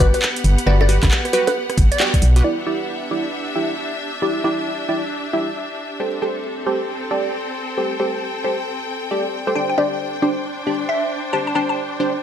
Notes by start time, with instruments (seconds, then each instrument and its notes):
Already playing: string section B3 D4 G4 F#5
0.00 fm bass G1, synth stab F#4 G4 D5, synth pluck B4, kick, open hi-hat
0.14 synth pluck B4, closed hi-hat
0.22 clap
0.36 closed hi-hat
0.44 fm bass G1, open hi-hat
0.58 closed hi-hat
0.66 fm bass G1, synth stab F#4 G4 B4, synth pluck D5
0.81 synth pluck D5, high bongo
0.89 synth stab F#4 G4 B4, open hi-hat
1.03 fm bass G1, kick, cross-stick, clap, closed hi-hat, high bongo
1.11 clap
1.25 cross-stick, closed hi-hat
1.33 synth stab F#4 G4 B4, synth pluck B4, open hi-hat
1.47 synth pluck B4, closed hi-hat, high bongo
1.70 cross-stick, closed hi-hat
1.78 fm bass G1, kick, open hi-hat
1.92 synth pluck D5, closed hi-hat
2.00 synth stab F#4 G4 D5, clap
2.14 kick, closed hi-hat
2.22 fm bass B1, open hi-hat
2.36 synth stab F#4 G4 B4, closed hi-hat
2.44 string section D4, synth stab E4 G4 D5
2.55 string section E5
2.67 synth stab E4 G4 D5
3.11 synth stab E4 G4 D5
3.55 synth stab E4 G4 E5
4.22 synth stab E4 G4 D5
4.44 synth stab E4 G4 D5
4.89 synth stab E4 G4 D5
5.33 synth stab E4 G4 E5
6.00 string section C4, synth stab G4 A4 C5
6.13 string section A4
6.22 synth stab G4 A4 C5
6.66 synth stab G4 A4 C5, string section G5
7.11 synth stab G4 A4 D5
7.78 synth stab G4 A4 C5
8.00 synth stab G4 A4 C5
8.44 synth stab G4 A4 C5
9.11 synth stab G4 A4 D5
9.47 synth stab G4 A4 C5
9.55 synth stab D4 G4 C5, string section D4, synth pluck G5
9.70 synth pluck G5
9.78 synth stab D4 G4 C5, synth pluck D5
9.82 string section C5
10.22 synth stab D4 G4 C5
10.67 synth stab D4 G4 D5
10.89 synth pluck E5
11.33 synth stab D4 G4 C5, synth pluck A5
11.47 synth pluck A5
11.55 synth stab D4 G4 C5, synth pluck A5
11.69 synth pluck A5
12.00 synth stab D4 G4 C5